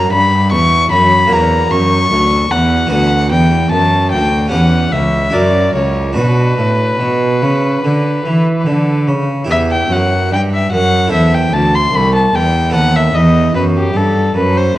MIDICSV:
0, 0, Header, 1, 4, 480
1, 0, Start_track
1, 0, Key_signature, 2, "minor"
1, 0, Tempo, 801068
1, 1746, Time_signature, 4, 2, 24, 8
1, 2710, Tempo, 828729
1, 5589, Key_signature, 1, "minor"
1, 5590, Tempo, 809717
1, 8723, End_track
2, 0, Start_track
2, 0, Title_t, "Violin"
2, 0, Program_c, 0, 40
2, 0, Note_on_c, 0, 82, 90
2, 67, Note_off_c, 0, 82, 0
2, 75, Note_on_c, 0, 83, 78
2, 309, Note_off_c, 0, 83, 0
2, 312, Note_on_c, 0, 85, 87
2, 546, Note_off_c, 0, 85, 0
2, 550, Note_on_c, 0, 83, 85
2, 796, Note_on_c, 0, 82, 76
2, 805, Note_off_c, 0, 83, 0
2, 1025, Note_on_c, 0, 85, 91
2, 1034, Note_off_c, 0, 82, 0
2, 1506, Note_on_c, 0, 78, 75
2, 1515, Note_off_c, 0, 85, 0
2, 1746, Note_off_c, 0, 78, 0
2, 1752, Note_on_c, 0, 78, 81
2, 1984, Note_off_c, 0, 78, 0
2, 1988, Note_on_c, 0, 79, 70
2, 2223, Note_off_c, 0, 79, 0
2, 2229, Note_on_c, 0, 81, 78
2, 2462, Note_off_c, 0, 81, 0
2, 2465, Note_on_c, 0, 79, 77
2, 2700, Note_off_c, 0, 79, 0
2, 2703, Note_on_c, 0, 78, 68
2, 2941, Note_on_c, 0, 76, 68
2, 2949, Note_off_c, 0, 78, 0
2, 3179, Note_on_c, 0, 74, 79
2, 3188, Note_off_c, 0, 76, 0
2, 3419, Note_off_c, 0, 74, 0
2, 3424, Note_on_c, 0, 73, 66
2, 3659, Note_off_c, 0, 73, 0
2, 3667, Note_on_c, 0, 71, 77
2, 5329, Note_off_c, 0, 71, 0
2, 5600, Note_on_c, 0, 76, 82
2, 5646, Note_off_c, 0, 76, 0
2, 5720, Note_on_c, 0, 79, 73
2, 5841, Note_on_c, 0, 78, 71
2, 5850, Note_off_c, 0, 79, 0
2, 6078, Note_off_c, 0, 78, 0
2, 6084, Note_on_c, 0, 79, 74
2, 6130, Note_off_c, 0, 79, 0
2, 6210, Note_on_c, 0, 76, 63
2, 6315, Note_off_c, 0, 76, 0
2, 6318, Note_on_c, 0, 78, 80
2, 6552, Note_off_c, 0, 78, 0
2, 6556, Note_on_c, 0, 76, 66
2, 6688, Note_on_c, 0, 79, 67
2, 6697, Note_off_c, 0, 76, 0
2, 6799, Note_on_c, 0, 81, 77
2, 6808, Note_off_c, 0, 79, 0
2, 6924, Note_on_c, 0, 84, 76
2, 6933, Note_off_c, 0, 81, 0
2, 7045, Note_on_c, 0, 83, 81
2, 7054, Note_off_c, 0, 84, 0
2, 7159, Note_off_c, 0, 83, 0
2, 7164, Note_on_c, 0, 81, 64
2, 7286, Note_on_c, 0, 79, 74
2, 7295, Note_off_c, 0, 81, 0
2, 7514, Note_off_c, 0, 79, 0
2, 7517, Note_on_c, 0, 78, 83
2, 7643, Note_on_c, 0, 76, 72
2, 7652, Note_off_c, 0, 78, 0
2, 7755, Note_on_c, 0, 75, 74
2, 7764, Note_off_c, 0, 76, 0
2, 7994, Note_off_c, 0, 75, 0
2, 7997, Note_on_c, 0, 71, 75
2, 8045, Note_off_c, 0, 71, 0
2, 8126, Note_on_c, 0, 67, 60
2, 8243, Note_on_c, 0, 69, 70
2, 8252, Note_off_c, 0, 67, 0
2, 8477, Note_off_c, 0, 69, 0
2, 8480, Note_on_c, 0, 71, 65
2, 8600, Note_on_c, 0, 72, 64
2, 8609, Note_off_c, 0, 71, 0
2, 8711, Note_off_c, 0, 72, 0
2, 8723, End_track
3, 0, Start_track
3, 0, Title_t, "Harpsichord"
3, 0, Program_c, 1, 6
3, 0, Note_on_c, 1, 66, 44
3, 0, Note_on_c, 1, 73, 44
3, 67, Note_on_c, 1, 43, 48
3, 285, Note_off_c, 1, 43, 0
3, 313, Note_on_c, 1, 40, 50
3, 527, Note_off_c, 1, 40, 0
3, 545, Note_on_c, 1, 42, 46
3, 755, Note_off_c, 1, 66, 0
3, 757, Note_on_c, 1, 58, 44
3, 758, Note_off_c, 1, 73, 0
3, 762, Note_off_c, 1, 42, 0
3, 766, Note_on_c, 1, 66, 42
3, 778, Note_on_c, 1, 73, 45
3, 787, Note_on_c, 1, 40, 47
3, 1004, Note_off_c, 1, 40, 0
3, 1026, Note_on_c, 1, 42, 52
3, 1237, Note_off_c, 1, 58, 0
3, 1243, Note_off_c, 1, 42, 0
3, 1267, Note_on_c, 1, 38, 52
3, 1482, Note_off_c, 1, 38, 0
3, 1506, Note_on_c, 1, 40, 49
3, 1710, Note_off_c, 1, 66, 0
3, 1717, Note_off_c, 1, 73, 0
3, 1717, Note_on_c, 1, 59, 44
3, 1722, Note_off_c, 1, 40, 0
3, 1727, Note_on_c, 1, 66, 47
3, 1735, Note_on_c, 1, 71, 43
3, 1744, Note_on_c, 1, 38, 47
3, 1961, Note_off_c, 1, 38, 0
3, 1982, Note_on_c, 1, 40, 47
3, 2201, Note_off_c, 1, 40, 0
3, 2227, Note_on_c, 1, 42, 51
3, 2444, Note_off_c, 1, 42, 0
3, 2472, Note_on_c, 1, 38, 46
3, 2672, Note_off_c, 1, 59, 0
3, 2677, Note_off_c, 1, 66, 0
3, 2681, Note_off_c, 1, 71, 0
3, 2682, Note_on_c, 1, 61, 39
3, 2688, Note_off_c, 1, 38, 0
3, 2693, Note_on_c, 1, 67, 37
3, 2702, Note_on_c, 1, 71, 40
3, 2710, Note_on_c, 1, 40, 41
3, 2922, Note_off_c, 1, 40, 0
3, 2946, Note_on_c, 1, 37, 46
3, 3153, Note_off_c, 1, 61, 0
3, 3159, Note_off_c, 1, 37, 0
3, 3159, Note_off_c, 1, 67, 0
3, 3160, Note_on_c, 1, 64, 41
3, 3163, Note_off_c, 1, 71, 0
3, 3170, Note_on_c, 1, 66, 38
3, 3179, Note_on_c, 1, 70, 43
3, 3186, Note_on_c, 1, 42, 45
3, 3399, Note_off_c, 1, 42, 0
3, 3425, Note_on_c, 1, 37, 44
3, 3636, Note_off_c, 1, 64, 0
3, 3641, Note_off_c, 1, 37, 0
3, 3641, Note_off_c, 1, 66, 0
3, 3641, Note_on_c, 1, 62, 40
3, 3646, Note_off_c, 1, 70, 0
3, 3649, Note_on_c, 1, 66, 40
3, 3658, Note_on_c, 1, 71, 40
3, 3667, Note_on_c, 1, 47, 42
3, 3884, Note_off_c, 1, 47, 0
3, 3904, Note_on_c, 1, 45, 44
3, 4123, Note_off_c, 1, 45, 0
3, 4144, Note_on_c, 1, 47, 42
3, 4364, Note_off_c, 1, 47, 0
3, 4390, Note_on_c, 1, 49, 41
3, 4607, Note_off_c, 1, 49, 0
3, 4634, Note_on_c, 1, 50, 42
3, 4848, Note_off_c, 1, 50, 0
3, 4871, Note_on_c, 1, 52, 41
3, 5086, Note_off_c, 1, 52, 0
3, 5107, Note_on_c, 1, 50, 41
3, 5325, Note_off_c, 1, 50, 0
3, 5347, Note_on_c, 1, 49, 39
3, 5556, Note_off_c, 1, 62, 0
3, 5560, Note_off_c, 1, 66, 0
3, 5561, Note_on_c, 1, 64, 42
3, 5564, Note_off_c, 1, 71, 0
3, 5565, Note_off_c, 1, 49, 0
3, 5570, Note_on_c, 1, 67, 39
3, 5580, Note_on_c, 1, 71, 42
3, 5587, Note_on_c, 1, 40, 44
3, 5807, Note_off_c, 1, 40, 0
3, 5833, Note_on_c, 1, 42, 49
3, 6050, Note_off_c, 1, 42, 0
3, 6075, Note_on_c, 1, 43, 46
3, 6292, Note_off_c, 1, 43, 0
3, 6318, Note_on_c, 1, 42, 42
3, 6518, Note_off_c, 1, 64, 0
3, 6522, Note_off_c, 1, 67, 0
3, 6526, Note_on_c, 1, 64, 38
3, 6527, Note_off_c, 1, 71, 0
3, 6533, Note_off_c, 1, 42, 0
3, 6535, Note_on_c, 1, 69, 37
3, 6546, Note_on_c, 1, 72, 38
3, 6553, Note_on_c, 1, 40, 43
3, 6770, Note_off_c, 1, 40, 0
3, 6793, Note_on_c, 1, 38, 50
3, 7009, Note_off_c, 1, 38, 0
3, 7037, Note_on_c, 1, 36, 46
3, 7251, Note_off_c, 1, 36, 0
3, 7274, Note_on_c, 1, 40, 43
3, 7474, Note_off_c, 1, 64, 0
3, 7479, Note_off_c, 1, 69, 0
3, 7484, Note_off_c, 1, 72, 0
3, 7489, Note_on_c, 1, 59, 40
3, 7490, Note_off_c, 1, 40, 0
3, 7498, Note_on_c, 1, 69, 41
3, 7507, Note_on_c, 1, 71, 45
3, 7515, Note_on_c, 1, 39, 48
3, 7731, Note_off_c, 1, 39, 0
3, 7751, Note_on_c, 1, 40, 51
3, 7970, Note_off_c, 1, 40, 0
3, 7991, Note_on_c, 1, 42, 48
3, 8209, Note_off_c, 1, 42, 0
3, 8225, Note_on_c, 1, 43, 44
3, 8444, Note_off_c, 1, 43, 0
3, 8463, Note_on_c, 1, 42, 45
3, 8682, Note_off_c, 1, 42, 0
3, 8704, Note_on_c, 1, 40, 44
3, 8723, Note_off_c, 1, 40, 0
3, 8723, Note_off_c, 1, 59, 0
3, 8723, Note_off_c, 1, 69, 0
3, 8723, Note_off_c, 1, 71, 0
3, 8723, End_track
4, 0, Start_track
4, 0, Title_t, "Cello"
4, 0, Program_c, 2, 42
4, 0, Note_on_c, 2, 42, 63
4, 65, Note_off_c, 2, 42, 0
4, 69, Note_on_c, 2, 43, 61
4, 313, Note_on_c, 2, 40, 63
4, 322, Note_off_c, 2, 43, 0
4, 544, Note_off_c, 2, 40, 0
4, 547, Note_on_c, 2, 42, 53
4, 783, Note_off_c, 2, 42, 0
4, 791, Note_on_c, 2, 40, 61
4, 1025, Note_off_c, 2, 40, 0
4, 1030, Note_on_c, 2, 42, 58
4, 1264, Note_off_c, 2, 42, 0
4, 1271, Note_on_c, 2, 38, 59
4, 1504, Note_off_c, 2, 38, 0
4, 1509, Note_on_c, 2, 40, 59
4, 1740, Note_off_c, 2, 40, 0
4, 1743, Note_on_c, 2, 38, 58
4, 1985, Note_on_c, 2, 40, 53
4, 1994, Note_off_c, 2, 38, 0
4, 2222, Note_off_c, 2, 40, 0
4, 2226, Note_on_c, 2, 42, 58
4, 2477, Note_on_c, 2, 38, 53
4, 2486, Note_off_c, 2, 42, 0
4, 2710, Note_off_c, 2, 38, 0
4, 2714, Note_on_c, 2, 40, 59
4, 2942, Note_off_c, 2, 40, 0
4, 2948, Note_on_c, 2, 37, 54
4, 3178, Note_off_c, 2, 37, 0
4, 3183, Note_on_c, 2, 42, 55
4, 3416, Note_off_c, 2, 42, 0
4, 3421, Note_on_c, 2, 37, 53
4, 3666, Note_on_c, 2, 47, 50
4, 3675, Note_off_c, 2, 37, 0
4, 3905, Note_off_c, 2, 47, 0
4, 3909, Note_on_c, 2, 45, 51
4, 4144, Note_off_c, 2, 45, 0
4, 4147, Note_on_c, 2, 47, 52
4, 4389, Note_on_c, 2, 49, 48
4, 4397, Note_off_c, 2, 47, 0
4, 4627, Note_off_c, 2, 49, 0
4, 4630, Note_on_c, 2, 50, 47
4, 4865, Note_off_c, 2, 50, 0
4, 4873, Note_on_c, 2, 52, 53
4, 5106, Note_off_c, 2, 52, 0
4, 5113, Note_on_c, 2, 50, 53
4, 5350, Note_on_c, 2, 49, 52
4, 5359, Note_off_c, 2, 50, 0
4, 5585, Note_off_c, 2, 49, 0
4, 5589, Note_on_c, 2, 40, 54
4, 5815, Note_off_c, 2, 40, 0
4, 5828, Note_on_c, 2, 42, 55
4, 6074, Note_on_c, 2, 43, 52
4, 6083, Note_off_c, 2, 42, 0
4, 6315, Note_off_c, 2, 43, 0
4, 6319, Note_on_c, 2, 42, 56
4, 6553, Note_off_c, 2, 42, 0
4, 6560, Note_on_c, 2, 40, 55
4, 6790, Note_off_c, 2, 40, 0
4, 6794, Note_on_c, 2, 38, 52
4, 7029, Note_off_c, 2, 38, 0
4, 7032, Note_on_c, 2, 36, 55
4, 7268, Note_off_c, 2, 36, 0
4, 7276, Note_on_c, 2, 40, 54
4, 7511, Note_on_c, 2, 39, 55
4, 7520, Note_off_c, 2, 40, 0
4, 7748, Note_off_c, 2, 39, 0
4, 7752, Note_on_c, 2, 40, 55
4, 7989, Note_off_c, 2, 40, 0
4, 7996, Note_on_c, 2, 42, 57
4, 8227, Note_off_c, 2, 42, 0
4, 8231, Note_on_c, 2, 43, 52
4, 8466, Note_off_c, 2, 43, 0
4, 8470, Note_on_c, 2, 42, 59
4, 8705, Note_off_c, 2, 42, 0
4, 8723, End_track
0, 0, End_of_file